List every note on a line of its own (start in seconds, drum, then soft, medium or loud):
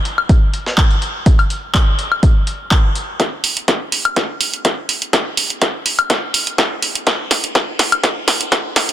0.05 closed hi-hat medium
0.18 high woodblock medium
0.29 kick loud
0.29 closed hi-hat medium
0.54 closed hi-hat medium
0.66 snare soft
0.78 kick loud
0.78 clap loud
0.78 closed hi-hat medium
0.91 closed hi-hat soft
1.02 closed hi-hat medium
1.26 kick loud
1.26 closed hi-hat medium
1.39 closed hi-hat soft
1.39 high woodblock medium
1.50 closed hi-hat medium
1.74 kick loud
1.74 clap loud
1.74 closed hi-hat medium
1.99 closed hi-hat medium
2.12 high woodblock medium
2.23 kick loud
2.23 closed hi-hat medium
2.47 closed hi-hat medium
2.71 kick loud
2.71 clap loud
2.71 closed hi-hat medium
2.95 closed hi-hat medium
3.20 kick loud
3.20 snare soft
3.20 closed hi-hat soft
3.44 open hi-hat loud
3.57 closed hi-hat medium
3.68 kick loud
3.68 snare soft
3.68 closed hi-hat medium
3.92 open hi-hat medium
4.05 closed hi-hat medium
4.05 high woodblock medium
4.16 kick loud
4.16 snare soft
4.16 closed hi-hat soft
4.41 open hi-hat loud
4.54 closed hi-hat medium
4.65 kick loud
4.65 snare medium
4.65 closed hi-hat soft
4.89 open hi-hat medium
5.02 closed hi-hat medium
5.13 kick loud
5.13 snare medium
5.13 closed hi-hat soft
5.37 open hi-hat loud
5.50 closed hi-hat medium
5.62 kick loud
5.62 snare medium
5.62 closed hi-hat medium
5.86 open hi-hat loud
5.99 closed hi-hat medium
5.99 high woodblock medium
6.10 kick loud
6.10 snare medium
6.10 closed hi-hat soft
6.34 open hi-hat loud
6.47 closed hi-hat medium
6.58 kick loud
6.58 snare medium
6.58 closed hi-hat medium
6.82 open hi-hat medium
6.95 closed hi-hat medium
7.07 kick loud
7.07 snare medium
7.07 closed hi-hat soft
7.31 snare medium
7.31 open hi-hat loud
7.44 closed hi-hat medium
7.55 kick loud
7.55 snare medium
7.55 closed hi-hat medium
7.79 snare medium
7.79 open hi-hat loud
7.92 closed hi-hat medium
7.92 high woodblock medium
8.04 kick loud
8.04 snare medium
8.04 closed hi-hat soft
8.28 snare medium
8.28 open hi-hat loud
8.41 closed hi-hat medium
8.52 kick loud
8.52 snare medium
8.52 closed hi-hat soft
8.76 snare medium
8.76 open hi-hat medium
8.89 closed hi-hat medium